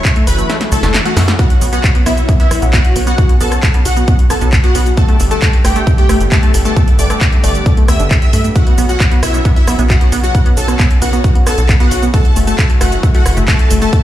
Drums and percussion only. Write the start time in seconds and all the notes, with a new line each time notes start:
0.05 kick, clap, closed hi-hat, shaker
0.16 closed hi-hat
0.27 open hi-hat, shaker
0.38 closed hi-hat, shaker
0.50 snare, closed hi-hat, shaker
0.61 snare, closed hi-hat
0.72 open hi-hat, shaker
0.83 snare, closed hi-hat, shaker
0.94 snare, clap, closed hi-hat, shaker
1.06 closed hi-hat
1.17 snare, open hi-hat, shaker
1.28 snare, closed hi-hat, shaker
1.39 kick, closed hi-hat, shaker
1.50 closed hi-hat
1.61 open hi-hat, shaker
1.73 closed hi-hat, shaker
1.84 kick, clap, closed hi-hat, shaker
1.95 closed hi-hat
2.06 cross-stick, open hi-hat, shaker
2.17 closed hi-hat, shaker
2.29 kick, closed hi-hat, shaker
2.40 closed hi-hat
2.51 cross-stick, open hi-hat, shaker
2.62 closed hi-hat, shaker
2.73 kick, clap, closed hi-hat, shaker
2.85 closed hi-hat
2.96 open hi-hat, shaker
3.07 closed hi-hat, shaker
3.18 kick, closed hi-hat, shaker
3.29 closed hi-hat
3.41 open hi-hat, shaker
3.52 cross-stick, closed hi-hat, shaker
3.63 kick, clap, closed hi-hat, shaker
3.74 closed hi-hat
3.85 open hi-hat, shaker
3.97 closed hi-hat, shaker
4.08 kick, closed hi-hat, shaker
4.19 closed hi-hat
4.30 cross-stick, open hi-hat, shaker
4.41 closed hi-hat, shaker
4.53 kick, clap, closed hi-hat, shaker
4.64 closed hi-hat
4.75 open hi-hat, shaker
4.86 closed hi-hat, shaker
4.97 kick, closed hi-hat, shaker
5.08 closed hi-hat
5.20 open hi-hat, shaker
5.31 closed hi-hat, shaker
5.42 kick, clap, closed hi-hat, shaker
5.53 closed hi-hat
5.65 cross-stick, open hi-hat, shaker
5.76 closed hi-hat, shaker
5.87 kick, closed hi-hat, shaker
5.98 closed hi-hat
6.09 cross-stick, open hi-hat, shaker
6.20 closed hi-hat, shaker
6.32 kick, clap, closed hi-hat, shaker
6.43 closed hi-hat
6.54 open hi-hat, shaker
6.65 closed hi-hat, shaker
6.76 kick, closed hi-hat, shaker
6.88 closed hi-hat
6.99 open hi-hat, shaker
7.10 cross-stick, closed hi-hat, shaker
7.21 kick, clap, closed hi-hat, shaker
7.32 closed hi-hat
7.44 open hi-hat, shaker
7.55 closed hi-hat, shaker
7.66 kick, closed hi-hat, shaker
7.77 closed hi-hat
7.88 cross-stick, open hi-hat, shaker
8.00 closed hi-hat, shaker
8.11 kick, clap, closed hi-hat, shaker
8.22 closed hi-hat
8.33 open hi-hat, shaker
8.44 closed hi-hat, shaker
8.56 kick, closed hi-hat, shaker
8.67 closed hi-hat
8.78 open hi-hat, shaker
8.89 closed hi-hat, shaker
9.00 kick, clap, closed hi-hat, shaker
9.12 closed hi-hat
9.23 cross-stick, open hi-hat, shaker
9.34 closed hi-hat, shaker
9.45 kick, closed hi-hat, shaker
9.56 closed hi-hat
9.68 cross-stick, open hi-hat, shaker
9.79 closed hi-hat, shaker
9.90 kick, clap, closed hi-hat, shaker
10.01 closed hi-hat
10.12 open hi-hat, shaker
10.24 closed hi-hat, shaker
10.35 kick, closed hi-hat, shaker
10.46 closed hi-hat
10.57 open hi-hat, shaker
10.68 cross-stick, closed hi-hat, shaker
10.79 kick, clap, closed hi-hat, shaker
10.91 closed hi-hat
11.02 open hi-hat, shaker
11.13 closed hi-hat, shaker
11.24 kick, closed hi-hat, shaker
11.35 closed hi-hat
11.47 cross-stick, open hi-hat, shaker
11.58 closed hi-hat, shaker
11.69 kick, clap, closed hi-hat, shaker
11.80 closed hi-hat
11.91 open hi-hat, shaker
12.03 closed hi-hat, shaker
12.14 kick, closed hi-hat, shaker
12.25 closed hi-hat
12.36 open hi-hat, shaker
12.47 closed hi-hat, shaker
12.59 kick, clap, closed hi-hat, shaker
12.70 closed hi-hat
12.81 cross-stick, open hi-hat, shaker
12.92 closed hi-hat, shaker
13.03 kick, closed hi-hat, shaker
13.15 closed hi-hat
13.26 cross-stick, open hi-hat, shaker
13.37 closed hi-hat, shaker
13.48 kick, clap, closed hi-hat, shaker
13.59 closed hi-hat
13.71 open hi-hat, shaker
13.82 closed hi-hat, shaker
13.93 kick, closed hi-hat, shaker